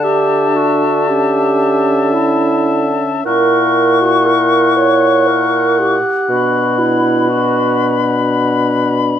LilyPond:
<<
  \new Staff \with { instrumentName = "Flute" } { \time 3/4 \key a \mixolydian \tempo 4 = 59 a''2. | cis'''2~ cis'''8 r8 | b''2. | }
  \new Staff \with { instrumentName = "Oboe" } { \time 3/4 \key a \mixolydian e''2. | fis''2.~ | fis''2~ fis''8 r8 | }
  \new Staff \with { instrumentName = "Clarinet" } { \time 3/4 \key a \mixolydian g'8 fis'8 g'4 e'8. r16 | ais'8. fis'16 ais'8 cis''8 ais'8 g'8 | fis'8 e'8 fis'4 r4 | }
  \new Staff \with { instrumentName = "French horn" } { \time 3/4 \key a \mixolydian d'4 cis'2 | e'2~ e'8 r8 | d'2. | }
  \new Staff \with { instrumentName = "Bassoon" } { \clef bass \time 3/4 \key a \mixolydian d2. | ais,2~ ais,8 r8 | b,2. | }
>>